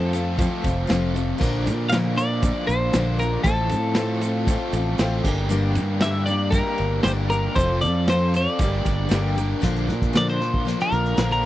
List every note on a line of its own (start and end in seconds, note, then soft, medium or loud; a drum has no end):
0.00 0.13 F2 medium
0.00 0.47 F2 loud
0.00 0.13 C3 loud
0.00 0.14 F3 medium
0.00 0.13 A3 medium
0.00 0.14 C4 medium
0.00 0.13 F4 medium
0.00 0.12 A4 medium
0.00 0.85 A4 medium
0.13 0.39 F3 medium
0.13 0.39 A3 medium
0.13 0.37 C4 medium
0.13 0.37 F4 medium
0.13 0.39 A4 medium
0.13 ride medium
0.13 shaker medium
0.37 0.63 F3 medium
0.37 0.91 A3 medium
0.37 0.64 C4 medium
0.37 0.63 F4 medium
0.37 0.61 A4 medium
0.37 kick loud
0.37 ride loud
0.37 shaker loud
0.62 0.85 F1 medium
0.62 0.88 C4 soft
0.62 0.87 F4 medium
0.62 0.89 A4 medium
0.62 kick medium
0.62 ride medium
0.67 shaker medium
0.87 1.32 F1 loud
0.87 1.40 F2 medium
0.87 1.40 C3 loud
0.87 1.14 F3 loud
0.87 1.15 C4 medium
0.87 1.15 F4 loud
0.87 1.13 A4 loud
0.87 snare loud
0.87 ride medium
0.92 1.16 A3 loud
0.92 shaker medium
1.14 1.42 F3 medium
1.14 1.40 A3 medium
1.14 1.39 C4 medium
1.14 1.39 F4 medium
1.14 1.40 A4 medium
1.14 ride medium
1.14 shaker medium
1.38 1.69 A#1 loud
1.38 1.65 A#2 loud
1.38 1.65 D3 medium
1.38 1.65 F3 medium
1.38 1.65 A#3 loud
1.38 1.64 D4 medium
1.38 1.63 A#4 loud
1.38 kick loud
1.38 crash loud
1.43 1.93 F4 loud
1.43 shaker medium
1.64 2.51 A#2 loud
1.64 1.91 F3 medium
1.64 1.91 A#3 medium
1.64 1.91 D4 medium
1.64 1.91 A#4 medium
1.64 ride medium
1.64 shaker medium
1.90 2.17 A#2 medium
1.90 2.17 D3 medium
1.90 2.17 F3 medium
1.90 2.17 A#3 medium
1.90 2.15 D4 medium
1.90 2.14 A#4 medium
1.90 1.97 F5 loud
1.90 snare loud
1.90 ride loud
1.90 shaker medium
1.94 2.17 F4 medium
2.15 2.40 F3 soft
2.15 2.43 A#3 soft
2.15 2.42 D4 medium
2.15 2.44 F4 medium
2.15 2.42 A#4 medium
2.15 2.65 D5 loud
2.15 ride medium
2.15 shaker medium
2.41 2.94 D3 medium
2.41 2.68 F3 medium
2.41 2.67 A#3 medium
2.41 2.66 D4 medium
2.41 2.96 F4 medium
2.41 2.65 A#4 medium
2.41 kick loud
2.41 ride loud
2.41 shaker loud
2.66 2.90 A#1 medium
2.66 2.92 F3 soft
2.66 2.93 A#3 soft
2.66 2.93 D4 medium
2.66 2.93 A#4 medium
2.66 3.19 C5 loud
2.66 ride medium
2.66 shaker medium
2.93 3.36 A#1 loud
2.93 3.19 A#2 medium
2.93 3.19 D3 medium
2.93 3.19 F3 medium
2.93 3.19 A#3 medium
2.93 3.19 D4 loud
2.93 3.18 A#4 medium
2.93 snare loud
2.93 ride loud
2.93 shaker loud
2.97 3.18 F4 loud
3.19 3.43 F3 medium
3.19 3.45 A#3 medium
3.19 3.46 D4 medium
3.19 3.43 F4 medium
3.19 3.45 A#4 medium
3.19 3.43 A#4 medium
3.19 ride medium
3.19 shaker medium
3.44 3.73 A1 loud
3.44 4.21 A2 loud
3.44 3.94 F3 loud
3.44 3.70 A3 medium
3.44 3.71 C4 medium
3.44 3.70 F4 medium
3.44 4.94 A4 medium
3.44 3.68 A4 medium
3.44 kick loud
3.44 ride loud
3.44 shaker loud
3.69 4.55 A2 loud
3.69 3.96 C4 soft
3.69 3.96 F4 medium
3.69 3.96 A4 medium
3.69 ride medium
3.69 shaker medium
3.95 4.46 F3 medium
3.95 4.22 A3 medium
3.95 4.22 C4 medium
3.95 4.22 F4 medium
3.95 4.20 A4 medium
3.95 snare loud
3.95 ride loud
3.95 shaker loud
4.21 4.47 A3 medium
4.21 4.48 C4 medium
4.21 4.48 F4 medium
4.21 4.47 A4 medium
4.21 ride medium
4.21 shaker medium
4.47 4.98 F3 medium
4.47 4.73 A3 medium
4.47 4.74 C4 medium
4.47 4.74 F4 medium
4.47 kick loud
4.47 ride loud
4.47 shaker loud
4.52 4.72 A4 medium
4.73 4.94 A1 loud
4.73 4.98 C4 soft
4.73 5.00 F4 medium
4.73 4.99 A4 medium
4.73 ride medium
4.73 shaker medium
4.98 5.20 A1 loud
4.98 5.23 A2 loud
4.98 5.23 F3 loud
4.98 5.25 A3 loud
4.98 5.25 C4 loud
4.98 5.25 F4 loud
4.98 5.25 A4 loud
4.98 snare loud
4.98 ride loud
4.98 shaker loud
5.24 5.78 G1 loud
5.24 5.48 G2 medium
5.24 5.48 D3 medium
5.24 5.49 G3 medium
5.24 5.49 A#3 medium
5.24 5.49 D4 medium
5.24 5.50 G4 loud
5.24 5.50 A#4 medium
5.24 kick loud
5.24 crash loud
5.24 shaker medium
5.29 5.50 G3 medium
5.49 5.75 G2 loud
5.49 5.76 D3 medium
5.49 5.75 G3 loud
5.49 5.75 A#3 loud
5.49 5.73 D4 loud
5.49 6.03 G4 loud
5.49 5.73 A#4 loud
5.49 shaker medium
5.74 6.61 G2 loud
5.74 6.02 G3 medium
5.74 6.02 A#3 medium
5.74 6.01 D4 medium
5.74 6.00 A#4 medium
5.74 ride medium
5.74 shaker medium
6.00 6.27 G2 medium
6.00 6.27 D3 medium
6.00 6.28 G3 medium
6.00 6.28 A#3 loud
6.00 6.28 D4 medium
6.00 6.26 G4 medium
6.00 6.27 A#4 medium
6.00 6.25 E5 loud
6.00 snare loud
6.00 ride loud
6.00 shaker medium
6.26 6.52 D4 medium
6.26 6.54 G4 medium
6.26 6.53 A#4 medium
6.26 6.50 D5 medium
6.26 ride medium
6.26 shaker medium
6.30 6.51 G3 soft
6.30 6.51 A#3 medium
6.51 6.78 G3 medium
6.51 6.78 A#3 medium
6.51 6.78 D4 medium
6.51 6.99 A#4 loud
6.51 6.77 A#4 medium
6.51 kick loud
6.51 ride loud
6.51 shaker loud
6.55 7.05 G4 loud
6.65 snare soft
6.78 7.00 G1 medium
6.78 7.03 G3 soft
6.78 7.04 A#3 soft
6.78 7.04 D4 medium
6.78 7.04 A#4 medium
6.78 ride medium
7.03 7.47 G1 loud
7.03 7.30 G2 medium
7.03 7.30 D3 medium
7.03 7.30 G3 loud
7.03 7.30 A#3 medium
7.03 7.30 D4 medium
7.03 7.30 G4 loud
7.03 7.29 A#4 loud
7.03 7.11 C5 loud
7.03 snare loud
7.03 ride medium
7.03 shaker medium
7.30 7.55 G3 medium
7.30 7.56 A#3 medium
7.30 7.56 D4 medium
7.30 7.55 G4 medium
7.30 7.56 A#4 medium
7.30 ride medium
7.30 shaker medium
7.55 7.84 F1 loud
7.55 7.81 F3 medium
7.55 7.82 C4 medium
7.55 7.81 F4 medium
7.55 7.80 A4 medium
7.55 7.80 C5 loud
7.55 kick loud
7.55 ride loud
7.55 shaker loud
7.81 8.46 F2 loud
7.81 8.07 C4 medium
7.81 8.08 F4 soft
7.81 8.07 A4 medium
7.81 8.08 D5 loud
7.81 ride medium
7.81 shaker medium
8.07 8.33 F3 medium
8.07 8.34 C4 medium
8.07 8.34 F4 medium
8.07 8.33 A4 medium
8.07 8.35 C5 medium
8.07 snare loud
8.07 ride loud
8.07 shaker medium
8.34 8.60 C4 soft
8.34 8.60 F4 medium
8.34 8.59 A4 medium
8.34 9.34 D5 medium
8.34 ride medium
8.34 shaker medium
8.59 8.80 G1 loud
8.59 9.12 G2 loud
8.59 9.12 D3 loud
8.59 8.85 G3 medium
8.59 8.85 A#3 medium
8.59 8.85 D4 medium
8.59 9.14 A#4 loud
8.59 kick loud
8.59 ride loud
8.59 shaker loud
8.63 8.84 G4 medium
8.73 snare soft
8.85 9.07 G1 medium
8.85 9.09 G3 soft
8.85 9.09 A#3 soft
8.85 9.10 D4 soft
8.85 9.11 G4 medium
8.85 kick medium
8.85 ride medium
8.85 shaker medium
9.08 9.54 G1 loud
9.08 9.35 G2 medium
9.08 9.36 D3 loud
9.08 9.36 G3 loud
9.08 9.36 A#3 loud
9.08 9.36 D4 loud
9.08 9.34 G4 loud
9.08 snare loud
9.08 ride loud
9.08 shaker loud
9.13 9.62 G2 loud
9.13 9.62 D3 loud
9.13 9.40 A#3 loud
9.13 9.38 A#4 loud
9.35 9.62 G3 medium
9.35 9.62 A#3 medium
9.35 9.62 D4 medium
9.35 9.62 G4 medium
9.35 9.62 A#4 medium
9.35 ride medium
9.35 shaker medium
9.61 9.90 A#1 loud
9.61 9.87 A#2 medium
9.61 9.88 D3 loud
9.61 9.88 F3 medium
9.61 9.88 A#3 loud
9.61 9.88 D4 loud
9.61 10.17 F4 loud
9.61 9.86 A#4 loud
9.61 kick loud
9.61 closed hi-hat loud
9.76 closed hi-hat medium
9.87 10.74 A#2 loud
9.87 10.12 F3 medium
9.87 10.13 A#3 medium
9.87 10.14 D4 medium
9.87 10.14 A#4 medium
9.87 closed hi-hat medium
10.02 kick medium
10.02 closed hi-hat soft
10.13 10.39 A#2 medium
10.13 10.39 D3 medium
10.13 10.39 F3 medium
10.13 10.40 A#3 medium
10.13 10.40 D4 medium
10.13 10.39 A#4 medium
10.13 snare loud
10.13 closed hi-hat loud
10.17 10.40 F4 medium
10.17 10.28 D5 medium
10.29 10.78 C5 medium
10.29 closed hi-hat medium
10.40 10.64 F3 soft
10.40 10.66 A#3 soft
10.40 10.66 D4 medium
10.40 10.67 F4 medium
10.40 10.66 A#4 medium
10.40 closed hi-hat medium
10.54 kick medium
10.65 11.18 D3 medium
10.65 10.91 F3 medium
10.65 10.92 A#3 medium
10.65 10.91 D4 medium
10.65 11.19 F4 loud
10.65 10.90 A#4 medium
10.65 closed hi-hat loud
10.80 11.30 A#4 medium
10.80 closed hi-hat medium
10.92 11.13 A#1 loud
10.92 11.16 F3 soft
10.92 11.17 A#3 soft
10.92 11.18 D4 medium
10.92 11.17 A#4 medium
10.92 closed hi-hat medium
11.06 closed hi-hat soft
11.17 11.46 A#1 loud
11.17 11.43 A#2 medium
11.17 11.43 D3 medium
11.17 11.43 F3 medium
11.17 11.44 A#3 medium
11.17 11.43 D4 medium
11.17 11.43 F4 loud
11.17 11.42 A#4 medium
11.17 snare loud
11.17 closed hi-hat loud
11.32 11.46 A#4 loud
11.32 closed hi-hat soft